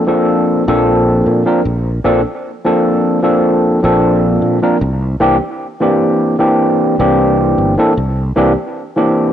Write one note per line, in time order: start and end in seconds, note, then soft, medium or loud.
0.07 0.63 F3 medium
0.07 0.63 A#3 medium
0.07 0.63 C4 medium
0.07 0.63 D4 medium
0.07 0.63 A4 medium
0.67 1.21 A#1 loud
0.67 1.42 F3 medium
0.67 1.42 A#3 medium
0.67 1.42 C4 medium
0.67 1.42 D4 medium
0.67 1.42 A4 medium
1.26 1.44 A#2 medium
1.46 1.60 F3 medium
1.46 1.60 A#3 medium
1.46 1.60 C4 medium
1.46 1.60 D4 medium
1.46 1.61 A#4 medium
1.65 1.99 A#1 loud
2.04 2.22 A#1 medium
2.04 2.20 F3 medium
2.04 2.20 A#3 medium
2.04 2.20 C4 medium
2.04 2.20 D4 medium
2.04 2.20 A4 loud
2.64 3.19 F3 medium
2.64 3.19 A#3 medium
2.64 3.19 C4 medium
2.64 3.19 D4 medium
2.64 3.19 A4 medium
3.23 3.78 F3 medium
3.23 3.79 A#3 medium
3.23 3.79 C4 medium
3.23 3.79 D4 medium
3.23 3.79 A4 medium
3.83 4.37 A#1 loud
3.83 4.57 F3 medium
3.83 4.58 A#3 medium
3.83 4.58 C4 medium
3.83 4.58 D4 medium
3.83 4.58 A4 medium
4.42 4.59 A#2 medium
4.62 4.76 F3 medium
4.62 4.76 A#3 medium
4.62 4.76 C4 medium
4.62 4.77 D4 medium
4.62 4.77 A#4 medium
4.81 5.15 C2 loud
5.20 5.38 C2 medium
5.20 5.36 E3 loud
5.20 5.36 A#3 medium
5.20 5.36 C4 medium
5.20 5.36 D4 medium
5.20 5.36 G4 loud
5.80 6.35 E3 medium
5.80 6.35 A#3 medium
5.80 6.35 C4 medium
5.80 6.35 D4 medium
5.80 6.35 G4 medium
6.39 6.94 E3 medium
6.39 6.94 A#3 medium
6.39 6.95 C4 medium
6.39 6.95 D4 medium
6.39 6.95 G4 medium
6.99 7.53 C2 loud
6.99 7.73 E3 medium
6.99 7.73 A#3 medium
6.99 7.74 C4 medium
6.99 7.74 D4 medium
6.99 7.74 G4 medium
7.58 7.75 G1 medium
7.78 7.92 E3 medium
7.78 7.92 A#3 medium
7.78 7.92 C4 medium
7.78 7.92 D4 medium
7.78 7.93 A4 medium
7.97 8.31 C2 loud
8.36 8.54 C2 medium
8.36 8.51 E3 loud
8.36 8.52 A#3 medium
8.36 8.52 C4 medium
8.36 8.52 D4 loud
8.36 8.52 G4 loud
8.96 9.33 E3 medium
8.96 9.33 A#3 medium
8.96 9.33 C4 medium
8.96 9.33 D4 medium
8.96 9.33 G4 medium